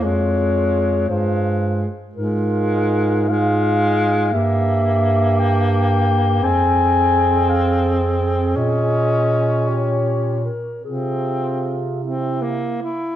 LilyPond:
<<
  \new Staff \with { instrumentName = "Clarinet" } { \time 6/8 \key f \minor \tempo 4. = 56 des''4. c''4 r8 | bes'4. f''4. | e''4. g''4. | aes''4. f''8 r4 |
ees''4. des''4 bes'8 | aes'4. r4. | }
  \new Staff \with { instrumentName = "Alto saxophone" } { \time 6/8 \key f \minor f'4. f'4 r8 | f'4. f'4. | g'2. | aes'2.~ |
aes'4. g'4 r8 | f'4. e'4 r8 | }
  \new Staff \with { instrumentName = "Tenor saxophone" } { \time 6/8 \key f \minor aes4. aes4 r8 | aes4. aes4. | bes2. | c'2. |
des'2~ des'8 r8 | c'4. c'8 bes8 e'8 | }
  \new Staff \with { instrumentName = "Bass clarinet" } { \clef bass \time 6/8 \key f \minor f,4. g,4 r8 | aes,2. | g,2. | f,2. |
bes,2~ bes,8 r8 | c2~ c8 r8 | }
>>